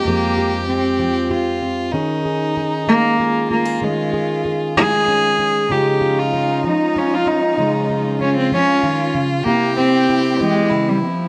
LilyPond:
<<
  \new Staff \with { instrumentName = "Violin" } { \time 3/4 \key ees \mixolydian \tempo 4 = 96 g'2 f'4 | ees'2 f'4~ | f'2~ f'8 r8 | ees'2.~ |
ees'4 f'2 | g'2 e'4 | }
  \new Staff \with { instrumentName = "Steel-string acoustic guitar" } { \time 3/4 \key ees \mixolydian << { <aes c' g'>8 g'8 c'4 g'8 c'8 | <des' aes'>8 aes'8 aes'4 aes'8 f'16 aes'16 | <des' aes'>8 aes'8 aes'4 des'8 des'8 | <aes des' f'>8 f'8 des'4 f'8 des'8 |
<aes des' f'>8 f'8 des'2 | <bes e' g'>8 g'8 e'2 | } \\ { f,4. f4. | ees4. aes4. | ees4. aes4. | des4. f4. |
des4. f8 ees8 des8 | c4. e8 des8 r8 | } >> }
  \new Staff \with { instrumentName = "String section" } { \time 3/4 \key ees \mixolydian r2. | r2. | r2. | <f aes des' f'>2.~ |
<f aes des' f'>2. | <bes c' e' g'>2. | }
  \new Staff \with { instrumentName = "Cello" } { \time 3/4 \key ees \mixolydian bes4 c'4. r8 | r4. bes4 bes8 | aes4 r8 aes'4. | g'8. f'8. ees'8 des'16 f'16 ees'8~ |
ees'8 r8 des'16 c'16 des'4 r8 | bes8 c'4 aes8. g16 f8 | }
>>